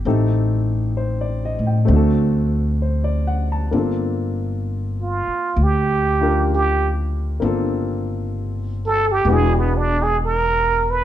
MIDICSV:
0, 0, Header, 1, 5, 480
1, 0, Start_track
1, 0, Key_signature, -2, "minor"
1, 0, Tempo, 921659
1, 29, Time_signature, 4, 2, 24, 8
1, 5750, End_track
2, 0, Start_track
2, 0, Title_t, "Muted trumpet"
2, 0, Program_c, 0, 59
2, 2615, Note_on_c, 0, 65, 70
2, 2931, Note_on_c, 0, 67, 78
2, 2939, Note_off_c, 0, 65, 0
2, 3394, Note_off_c, 0, 67, 0
2, 3408, Note_on_c, 0, 67, 78
2, 3597, Note_off_c, 0, 67, 0
2, 4616, Note_on_c, 0, 69, 94
2, 4747, Note_on_c, 0, 67, 86
2, 4754, Note_off_c, 0, 69, 0
2, 4858, Note_on_c, 0, 68, 88
2, 4866, Note_off_c, 0, 67, 0
2, 4992, Note_on_c, 0, 59, 68
2, 5000, Note_off_c, 0, 68, 0
2, 5088, Note_on_c, 0, 62, 91
2, 5095, Note_off_c, 0, 59, 0
2, 5222, Note_on_c, 0, 68, 90
2, 5230, Note_off_c, 0, 62, 0
2, 5300, Note_off_c, 0, 68, 0
2, 5339, Note_on_c, 0, 70, 86
2, 5677, Note_on_c, 0, 71, 85
2, 5685, Note_off_c, 0, 70, 0
2, 5750, Note_off_c, 0, 71, 0
2, 5750, End_track
3, 0, Start_track
3, 0, Title_t, "Grand piano"
3, 0, Program_c, 1, 0
3, 0, Control_c, 1, 64, 127
3, 32, Note_on_c, 1, 60, 53
3, 34, Note_on_c, 1, 57, 55
3, 35, Note_on_c, 1, 67, 48
3, 36, Control_c, 1, 64, 0
3, 37, Note_on_c, 1, 63, 54
3, 42, Note_on_c, 1, 69, 57
3, 124, Control_c, 1, 64, 127
3, 505, Note_on_c, 1, 72, 51
3, 630, Note_on_c, 1, 74, 53
3, 735, Note_off_c, 1, 72, 0
3, 756, Note_on_c, 1, 75, 51
3, 837, Note_off_c, 1, 74, 0
3, 868, Note_on_c, 1, 79, 52
3, 897, Note_off_c, 1, 75, 0
3, 956, Note_off_c, 1, 57, 0
3, 963, Note_on_c, 1, 57, 60
3, 966, Note_off_c, 1, 60, 0
3, 973, Note_on_c, 1, 60, 54
3, 988, Note_off_c, 1, 67, 0
3, 989, Note_off_c, 1, 63, 0
3, 990, Note_on_c, 1, 62, 51
3, 991, Control_c, 1, 64, 0
3, 992, Note_off_c, 1, 69, 0
3, 1006, Note_on_c, 1, 66, 47
3, 1021, Note_on_c, 1, 69, 63
3, 1034, Note_off_c, 1, 79, 0
3, 1079, Control_c, 1, 64, 127
3, 1469, Note_on_c, 1, 72, 41
3, 1584, Note_on_c, 1, 74, 53
3, 1696, Note_off_c, 1, 72, 0
3, 1705, Note_on_c, 1, 78, 56
3, 1792, Note_off_c, 1, 74, 0
3, 1834, Note_on_c, 1, 81, 54
3, 1850, Note_off_c, 1, 78, 0
3, 1931, Note_off_c, 1, 57, 0
3, 1932, Note_off_c, 1, 60, 0
3, 1934, Note_on_c, 1, 58, 48
3, 1937, Note_off_c, 1, 62, 0
3, 1939, Note_on_c, 1, 60, 42
3, 1945, Note_on_c, 1, 62, 46
3, 1949, Control_c, 1, 64, 0
3, 1950, Note_on_c, 1, 65, 46
3, 1953, Note_off_c, 1, 66, 0
3, 1955, Note_off_c, 1, 69, 0
3, 1963, Note_on_c, 1, 69, 48
3, 1995, Note_off_c, 1, 81, 0
3, 2024, Control_c, 1, 64, 127
3, 3226, Note_off_c, 1, 62, 0
3, 3229, Note_off_c, 1, 65, 0
3, 3234, Note_on_c, 1, 62, 49
3, 3237, Note_on_c, 1, 65, 44
3, 3242, Note_on_c, 1, 67, 45
3, 3245, Note_on_c, 1, 70, 52
3, 3845, Note_off_c, 1, 58, 0
3, 3853, Note_off_c, 1, 60, 0
3, 3853, Note_on_c, 1, 58, 56
3, 3858, Note_off_c, 1, 62, 0
3, 3861, Note_on_c, 1, 60, 49
3, 3862, Note_off_c, 1, 65, 0
3, 3865, Note_off_c, 1, 67, 0
3, 3866, Note_off_c, 1, 70, 0
3, 3866, Note_on_c, 1, 62, 42
3, 3867, Note_off_c, 1, 69, 0
3, 3875, Note_on_c, 1, 65, 48
3, 3880, Note_on_c, 1, 69, 54
3, 4815, Note_off_c, 1, 58, 0
3, 4819, Note_off_c, 1, 60, 0
3, 4819, Note_on_c, 1, 56, 54
3, 4822, Note_off_c, 1, 62, 0
3, 4825, Control_c, 1, 64, 0
3, 4826, Note_off_c, 1, 65, 0
3, 4829, Note_off_c, 1, 69, 0
3, 4829, Note_on_c, 1, 59, 54
3, 4835, Note_on_c, 1, 62, 52
3, 4844, Note_on_c, 1, 64, 54
3, 4848, Note_on_c, 1, 66, 64
3, 4903, Control_c, 1, 64, 127
3, 5750, Note_off_c, 1, 56, 0
3, 5750, Note_off_c, 1, 59, 0
3, 5750, Note_off_c, 1, 62, 0
3, 5750, Note_off_c, 1, 64, 0
3, 5750, Note_off_c, 1, 66, 0
3, 5750, End_track
4, 0, Start_track
4, 0, Title_t, "Upright bass"
4, 0, Program_c, 2, 32
4, 27, Note_on_c, 2, 33, 84
4, 814, Note_off_c, 2, 33, 0
4, 827, Note_on_c, 2, 45, 68
4, 970, Note_off_c, 2, 45, 0
4, 980, Note_on_c, 2, 38, 99
4, 1919, Note_off_c, 2, 38, 0
4, 1940, Note_on_c, 2, 31, 79
4, 2727, Note_off_c, 2, 31, 0
4, 2898, Note_on_c, 2, 38, 94
4, 3836, Note_off_c, 2, 38, 0
4, 3864, Note_on_c, 2, 31, 86
4, 4800, Note_off_c, 2, 31, 0
4, 4817, Note_on_c, 2, 28, 92
4, 5750, Note_off_c, 2, 28, 0
4, 5750, End_track
5, 0, Start_track
5, 0, Title_t, "Muted upright bass strokes"
5, 2746, Note_on_c, 9, 29, 36
5, 2798, Note_off_c, 9, 29, 0
5, 5750, End_track
0, 0, End_of_file